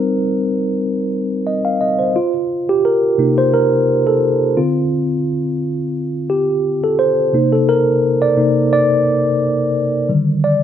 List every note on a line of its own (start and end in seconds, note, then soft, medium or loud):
0.00 0.16 G3 medium
0.00 0.16 C4 medium
0.00 0.16 D#4 medium
0.00 0.16 A#4 medium
1.47 1.65 D#5 medium
1.65 1.80 F5 medium
1.81 1.99 D#5 medium
1.99 2.32 C5 soft
2.16 2.65 F4 medium
2.69 2.86 G4 medium
2.85 3.40 A#4 medium
3.18 4.53 C3 medium
3.18 4.53 A#3 soft
3.18 4.54 D#4 medium
3.38 3.54 C5 medium
3.54 4.09 A#4 loud
4.07 4.59 A4 medium
4.57 7.29 D3 soft
4.57 7.30 C4 soft
4.57 7.30 F4 medium
6.30 6.80 G4 medium
6.84 7.00 A4 medium
6.99 7.54 C5 medium
7.33 7.81 C3 medium
7.33 7.81 A#3 soft
7.33 7.81 D#4 medium
7.53 7.69 A4 medium
7.69 8.23 A#4 loud
8.22 8.72 D5 loud
8.37 8.68 C3 soft
8.37 8.68 A#3 soft
8.37 8.69 D#4 medium
8.73 9.38 D5 loud
10.09 10.63 D3 medium
10.09 10.63 D#3 medium
10.09 10.63 G3 medium
10.44 10.63 D5 medium